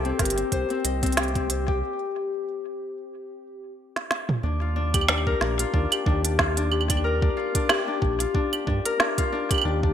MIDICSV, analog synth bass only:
0, 0, Header, 1, 2, 480
1, 0, Start_track
1, 0, Key_signature, -3, "major"
1, 0, Tempo, 652174
1, 1342, Time_signature, 4, 2, 24, 8
1, 7311, End_track
2, 0, Start_track
2, 0, Title_t, "Analog synth bass"
2, 0, Program_c, 0, 38
2, 0, Note_on_c, 0, 36, 99
2, 93, Note_off_c, 0, 36, 0
2, 142, Note_on_c, 0, 31, 95
2, 321, Note_off_c, 0, 31, 0
2, 382, Note_on_c, 0, 36, 89
2, 478, Note_off_c, 0, 36, 0
2, 623, Note_on_c, 0, 36, 99
2, 1343, Note_off_c, 0, 36, 0
2, 3262, Note_on_c, 0, 39, 97
2, 3933, Note_off_c, 0, 39, 0
2, 3982, Note_on_c, 0, 34, 94
2, 4161, Note_off_c, 0, 34, 0
2, 4222, Note_on_c, 0, 39, 89
2, 4318, Note_off_c, 0, 39, 0
2, 4462, Note_on_c, 0, 39, 97
2, 5373, Note_off_c, 0, 39, 0
2, 5902, Note_on_c, 0, 34, 99
2, 6081, Note_off_c, 0, 34, 0
2, 6382, Note_on_c, 0, 43, 101
2, 6477, Note_off_c, 0, 43, 0
2, 7102, Note_on_c, 0, 39, 101
2, 7311, Note_off_c, 0, 39, 0
2, 7311, End_track
0, 0, End_of_file